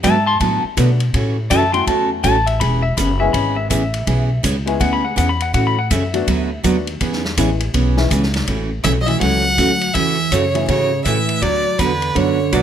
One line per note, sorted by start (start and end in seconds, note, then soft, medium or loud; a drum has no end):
0.03 0.40 G#2 loud
0.03 0.15 D3 medium
0.03 0.15 F#3 medium
0.03 0.15 B3 medium
0.03 0.15 F#4 medium
0.03 0.15 B4 medium
0.03 0.27 E5 medium
0.03 0.25 A5 medium
0.03 kick soft
0.03 hi-hat pedal medium
0.03 ride medium
0.26 0.39 A5 medium
0.26 0.40 C6 loud
0.40 0.62 A2 medium
0.40 0.62 D3 medium
0.40 0.62 F#3 medium
0.40 0.62 B3 medium
0.40 0.62 F#4 medium
0.40 0.62 B4 medium
0.40 0.63 A5 loud
0.40 kick soft
0.40 ride medium
0.64 muted upright bass stroke soft
0.77 1.13 B2 loud
0.77 0.88 D3 medium
0.77 0.98 F#3 medium
0.77 0.89 F#3 medium
0.77 0.98 A3 medium
0.77 0.98 B3 medium
0.77 0.89 B3 medium
0.77 0.98 D4 medium
0.77 0.89 F#4 medium
0.77 0.99 F#4 medium
0.77 0.89 B4 medium
0.77 kick soft
0.77 hi-hat pedal medium
0.77 ride medium
1.00 ride medium
1.14 1.50 A2 medium
1.14 1.35 C#3 medium
1.14 1.35 E3 medium
1.14 1.36 A3 medium
1.14 1.36 C#4 medium
1.14 1.36 F#4 medium
1.14 kick soft
1.14 ride medium
1.50 1.86 F#2 loud
1.50 1.62 C#3 medium
1.50 1.62 E3 medium
1.50 1.62 A3 medium
1.50 1.62 C#4 medium
1.50 1.62 F#4 medium
1.50 1.73 E5 medium
1.50 1.73 A5 medium
1.50 kick soft
1.50 hi-hat pedal medium
1.50 ride medium
1.73 2.21 F#3 medium
1.73 2.21 A3 medium
1.73 2.21 C#4 medium
1.73 2.22 E4 medium
1.73 2.22 F#4 medium
1.73 1.86 G5 medium
1.73 1.87 C6 medium
1.73 ride soft
1.87 2.23 E2 medium
1.87 2.08 C#3 medium
1.87 2.09 E3 medium
1.87 2.09 A3 medium
1.87 2.09 C#4 medium
1.87 2.09 F#4 medium
1.87 2.10 A5 loud
1.87 kick soft
1.87 ride medium
2.23 2.60 A1 loud
2.23 2.35 C#3 medium
2.23 2.35 E3 medium
2.23 2.35 A3 medium
2.23 2.35 C#4 medium
2.23 2.36 F#4 medium
2.23 2.46 A5 loud
2.23 kick soft
2.23 hi-hat pedal medium
2.23 ride medium
2.46 2.60 E5 medium
2.46 ride medium
2.60 2.96 E1 medium
2.60 2.82 E3 soft
2.60 2.82 B3 medium
2.60 2.82 C#4 medium
2.60 2.82 G#4 medium
2.60 2.83 B5 medium
2.60 kick soft
2.60 ride medium
2.82 2.96 E5 loud
2.97 3.33 F#1 medium
2.97 3.08 E3 medium
2.97 3.08 B3 medium
2.97 3.09 C#4 medium
2.97 3.09 G#4 loud
2.97 3.20 B5 loud
2.97 kick soft
2.97 hi-hat pedal medium
2.97 ride medium
3.19 3.67 G#3 medium
3.19 3.68 B3 medium
3.19 3.68 C#4 medium
3.19 3.68 E4 medium
3.19 3.68 G#4 loud
3.19 3.33 E5 loud
3.33 3.69 G#1 medium
3.33 3.55 E3 medium
3.33 3.55 B3 medium
3.33 3.56 C#4 medium
3.33 3.56 G#4 medium
3.33 3.56 B5 loud
3.33 kick soft
3.33 ride medium
3.56 3.69 E5 medium
3.70 4.06 A1 loud
3.70 3.82 E3 medium
3.70 3.82 B3 medium
3.70 3.82 C#4 medium
3.70 3.82 G#4 medium
3.70 4.42 E5 loud
3.70 kick soft
3.70 hi-hat pedal medium
3.70 ride medium
3.94 ride medium
4.07 4.43 B1 medium
4.07 4.28 E3 medium
4.07 4.29 B3 medium
4.07 4.29 C#4 medium
4.07 4.29 G#4 medium
4.07 kick soft
4.07 ride medium
4.43 4.80 C#2 medium
4.43 4.55 E3 medium
4.43 4.55 B3 medium
4.43 4.55 C#4 medium
4.43 4.55 G#4 medium
4.43 kick soft
4.43 hi-hat pedal medium
4.43 ride medium
4.66 5.14 G#3 medium
4.66 5.14 B3 medium
4.66 5.14 C#4 medium
4.66 5.15 E4 medium
4.66 5.15 G#4 loud
4.66 ride medium
4.80 5.16 D2 loud
4.80 5.02 E3 medium
4.80 5.02 B3 medium
4.80 5.02 C#4 medium
4.80 5.02 G#4 medium
4.80 4.92 F#5 loud
4.80 kick soft
4.80 ride medium
4.93 5.05 B5 medium
5.05 5.16 F#5 medium
5.16 5.53 E2 loud
5.16 5.28 E3 medium
5.16 5.28 B3 medium
5.16 5.28 C#4 medium
5.16 5.28 G#4 medium
5.16 5.29 F#5 loud
5.16 kick soft
5.16 hi-hat pedal medium
5.16 ride medium
5.29 5.41 B5 loud
5.40 5.53 F#5 medium
5.40 ride medium
5.53 5.90 A2 loud
5.53 5.75 C#3 medium
5.53 5.75 E3 medium
5.53 5.75 A3 medium
5.53 5.75 C#4 medium
5.53 5.76 F#4 medium
5.53 5.66 F#5 loud
5.53 kick soft
5.53 ride medium
5.67 5.78 B5 loud
5.79 5.90 F#5 medium
5.90 6.26 F#2 medium
5.90 6.02 C#3 medium
5.90 6.02 E3 medium
5.90 6.02 A3 medium
5.90 6.02 C#4 medium
5.90 6.02 F#4 medium
5.90 6.98 E5 loud
5.90 kick soft
5.90 hi-hat pedal medium
5.90 ride medium
6.14 6.26 F#3 medium
6.14 6.26 A3 medium
6.14 6.26 B3 medium
6.14 6.26 D4 medium
6.14 6.27 F#4 loud
6.14 ride medium
6.27 6.63 D2 medium
6.27 6.49 D3 medium
6.27 6.49 F#3 medium
6.27 6.49 B3 medium
6.27 6.49 F#4 medium
6.27 6.49 B4 medium
6.27 kick soft
6.27 ride medium
6.63 7.00 D#2 loud
6.63 6.75 D3 medium
6.63 6.75 F#3 medium
6.63 6.85 F#3 medium
6.63 6.85 A3 medium
6.63 6.75 B3 medium
6.63 6.85 B3 medium
6.63 6.86 D4 medium
6.63 6.76 F#4 loud
6.63 6.86 F#4 medium
6.63 6.76 B4 medium
6.63 kick soft
6.63 hi-hat pedal medium
6.63 ride medium
6.87 ride medium
7.00 7.37 E2 loud
7.00 7.22 E3 medium
7.00 7.22 B3 medium
7.00 7.22 C#4 medium
7.00 7.23 G#4 medium
7.00 kick soft
7.00 ride medium
7.13 snare soft
7.25 snare soft
7.37 7.73 A1 medium
7.37 7.49 E3 medium
7.37 7.58 E3 medium
7.37 7.58 G#3 medium
7.37 7.49 B3 medium
7.37 7.59 B3 medium
7.37 7.49 C#4 medium
7.37 7.59 C#4 medium
7.37 7.59 E4 medium
7.37 7.49 G#4 medium
7.37 kick soft
7.37 hi-hat pedal medium
7.37 ride loud
7.60 ride medium
7.74 8.10 B1 medium
7.74 7.95 E3 medium
7.74 7.96 B3 medium
7.74 7.96 C#4 medium
7.74 7.96 G#4 medium
7.74 kick soft
7.74 ride medium
7.97 8.09 E3 medium
7.97 8.10 G#3 medium
7.97 8.10 B3 medium
7.97 8.10 C#4 medium
7.97 8.10 E4 loud
7.97 snare medium
8.10 8.47 C#2 loud
8.10 8.22 E3 medium
8.10 8.22 B3 medium
8.10 8.23 C#4 medium
8.10 8.23 G#4 medium
8.10 kick soft
8.10 hi-hat pedal medium
8.10 ride medium
8.23 snare soft
8.34 snare medium
8.34 ride medium
8.47 8.84 A1 medium
8.47 8.69 C#3 soft
8.47 8.69 E3 soft
8.47 8.69 A3 medium
8.47 8.70 C#4 medium
8.47 8.70 F#4 medium
8.47 kick soft
8.47 ride medium
8.84 9.20 B1 medium
8.84 8.96 C#3 medium
8.84 8.96 E3 medium
8.84 8.96 A3 medium
8.84 8.96 C#4 medium
8.84 8.96 F#4 medium
8.84 8.92 E5 loud
8.84 kick soft
8.84 hi-hat pedal medium
8.84 ride medium
9.01 9.07 F#3 medium
9.01 9.08 D#5 medium
9.07 9.20 E3 medium
9.07 9.20 F#3 medium
9.07 9.20 A3 medium
9.07 9.20 C#4 medium
9.07 9.20 E4 medium
9.07 9.20 E5 medium
9.07 ride soft
9.20 9.57 C#2 medium
9.20 9.43 C#3 medium
9.20 9.43 E3 medium
9.20 9.90 F#3 medium
9.20 9.43 A3 medium
9.20 9.43 C#4 medium
9.20 9.43 F#4 medium
9.20 9.95 F#5 loud
9.20 kick soft
9.20 ride medium
9.58 9.94 D2 loud
9.58 9.69 C#3 medium
9.58 9.70 E3 medium
9.58 9.70 A3 medium
9.58 9.70 C#4 medium
9.58 9.70 F#4 medium
9.58 kick soft
9.58 hi-hat pedal medium
9.58 ride medium
9.81 ride soft
9.94 10.31 E2 medium
9.94 10.16 C#3 medium
9.94 10.17 E3 medium
9.94 10.17 A3 medium
9.94 10.17 C#4 medium
9.94 10.17 F#4 medium
9.94 10.33 E5 loud
9.94 kick soft
9.94 ride medium
10.31 10.68 F#2 medium
10.31 10.43 C#3 medium
10.31 10.43 E3 medium
10.31 10.43 A3 medium
10.31 10.44 C#4 medium
10.31 10.44 F#4 medium
10.31 10.67 C#5 loud
10.31 kick soft
10.31 hi-hat pedal medium
10.31 ride medium
10.54 10.67 E3 medium
10.54 10.67 F#3 medium
10.54 10.67 A3 medium
10.54 10.67 C#4 medium
10.54 10.68 E4 medium
10.54 ride soft
10.68 11.04 G#2 medium
10.68 10.90 C#3 medium
10.68 10.90 E3 medium
10.68 10.90 A3 medium
10.68 10.91 C#4 medium
10.68 10.90 F#4 medium
10.68 11.02 C#5 loud
10.68 kick soft
10.68 ride medium
11.05 11.41 A2 loud
11.05 11.17 C#3 medium
11.05 11.17 E3 medium
11.05 11.17 A3 medium
11.05 11.17 C#4 medium
11.05 11.17 F#4 medium
11.05 11.43 E5 medium
11.05 kick soft
11.05 hi-hat pedal medium
11.05 ride medium
11.29 ride soft
11.42 11.78 D2 medium
11.42 11.64 D3 soft
11.42 11.64 F#3 medium
11.42 11.64 B3 soft
11.42 11.64 F#4 medium
11.42 11.64 B4 medium
11.42 11.80 D5 loud
11.42 kick soft
11.42 ride medium
11.79 12.15 E2 medium
11.79 11.90 D3 medium
11.79 11.91 F#3 medium
11.79 11.91 B3 medium
11.79 11.91 F#4 medium
11.79 12.18 B4 medium
11.79 11.91 B4 medium
11.79 kick soft
11.79 hi-hat pedal medium
11.79 ride medium
12.02 ride soft
12.16 12.52 F#2 medium
12.16 12.37 D3 medium
12.16 12.38 F#3 medium
12.16 12.38 B3 medium
12.16 12.38 F#4 medium
12.16 12.38 B4 medium
12.16 12.54 C#5 medium
12.16 kick soft
12.16 ride medium
12.52 12.62 B1 medium
12.52 12.62 D3 medium
12.52 12.62 F#3 medium
12.52 12.62 A3 medium
12.52 12.62 B3 medium
12.52 12.62 D4 medium
12.52 12.62 F#4 medium
12.52 12.62 B4 medium
12.52 12.62 D5 medium
12.52 kick soft
12.52 hi-hat pedal medium
12.52 ride medium